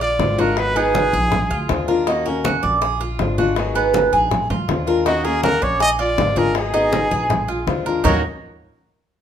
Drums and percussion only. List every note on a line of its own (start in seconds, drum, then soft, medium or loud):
0.01 high bongo soft
0.01 high conga soft
0.20 high bongo medium
0.20 low bongo medium
0.20 high conga medium
0.38 high bongo soft
0.38 high conga medium
0.57 high bongo medium
0.57 high conga soft
0.76 high conga soft
0.94 high bongo medium
0.94 high conga loud
1.13 high bongo soft
1.13 high conga soft
1.32 high bongo medium
1.32 high conga soft
1.32 low conga medium
1.50 high bongo soft
1.50 high conga soft
1.69 high bongo medium
1.69 low bongo medium
1.69 high conga medium
1.88 high bongo soft
1.88 high conga soft
2.07 high bongo medium
2.07 high conga soft
2.26 high conga soft
2.44 high bongo medium
2.44 high conga loud
2.63 high bongo soft
2.82 high bongo medium
2.82 high conga soft
3.01 high bongo soft
3.01 high conga soft
3.19 high bongo medium
3.19 low bongo medium
3.19 high conga medium
3.38 high bongo soft
3.38 high conga medium
3.56 high bongo medium
3.56 high conga soft
3.76 high conga soft
3.94 high bongo medium
3.94 high conga loud
4.13 high conga soft
4.31 high bongo medium
4.31 high conga soft
4.31 low conga medium
4.50 high bongo soft
4.50 high conga soft
4.50 low conga medium
4.69 high bongo medium
4.69 low bongo medium
4.69 high conga medium
4.87 high bongo soft
4.87 high conga soft
5.06 high bongo medium
5.06 high conga soft
5.25 high conga soft
5.43 high bongo medium
5.43 high conga medium
5.62 high bongo soft
5.80 high bongo medium
5.80 high conga soft
6.00 high bongo soft
6.00 high conga soft
6.18 high bongo medium
6.18 low bongo medium
6.18 high conga medium
6.36 high bongo soft
6.36 high conga medium
6.55 high bongo medium
6.55 high conga soft
6.74 high conga soft
6.92 high bongo medium
6.92 high conga medium
7.11 high bongo soft
7.11 high conga soft
7.30 high bongo medium
7.30 high conga soft
7.30 low conga medium
7.49 high bongo soft
7.49 high conga soft
7.67 high bongo medium
7.67 low bongo medium
7.67 high conga medium
7.86 high bongo soft
7.86 high conga soft
8.04 low bongo medium
8.04 low conga loud